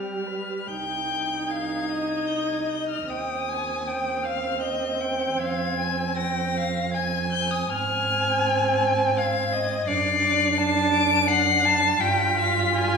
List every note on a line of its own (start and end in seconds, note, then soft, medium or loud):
0.00 0.60 G3 soft
0.00 0.28 G4 soft
0.00 0.69 F6 medium
0.27 0.70 B4 soft
0.68 3.05 C2 medium
0.68 3.05 D#4 medium
0.68 1.52 G5 medium
0.68 1.50 G6 medium
1.49 1.91 F5 medium
1.49 2.28 G#6 medium
1.90 3.12 D#5 medium
2.27 2.50 G6 medium
2.48 2.71 G#6 medium
2.69 2.88 G6 medium
2.89 3.09 F6 medium
3.07 5.33 D#2 medium
3.07 7.66 C4 medium
3.07 3.50 G5 medium
3.07 4.24 D#6 medium
3.48 3.88 G#5 medium
3.87 4.26 G5 medium
4.23 4.61 F5 medium
4.23 4.62 F6 medium
4.60 5.02 D#5 medium
4.60 5.39 G6 medium
5.00 5.41 G5 medium
5.38 7.66 F2 medium
5.38 5.78 F5 medium
5.38 6.16 G#6 medium
5.79 6.19 G#5 medium
6.17 6.59 G5 medium
6.17 6.92 A#6 medium
6.57 6.96 F5 medium
6.94 7.71 G#5 medium
6.94 7.31 G#6 medium
7.32 7.52 G6 medium
7.51 7.71 D#6 medium
7.70 9.84 G#2 medium
7.70 9.83 C4 medium
7.70 9.19 G#5 medium
7.70 8.82 F6 loud
9.17 9.54 F5 medium
9.17 9.84 G#6 loud
9.53 9.89 D#5 medium
9.87 11.95 F#2 medium
9.87 11.96 D4 medium
9.87 10.59 D5 medium
9.87 10.90 C7 loud
10.57 11.28 A5 loud
10.93 11.30 D7 loud
11.28 11.67 F#5 medium
11.28 12.02 C7 loud
11.65 12.02 A5 loud
12.00 12.97 G2 medium
12.00 12.97 F4 medium
12.00 12.40 G5 medium
12.00 12.97 B6 loud
12.38 12.73 F5 medium
12.74 12.97 G#5 medium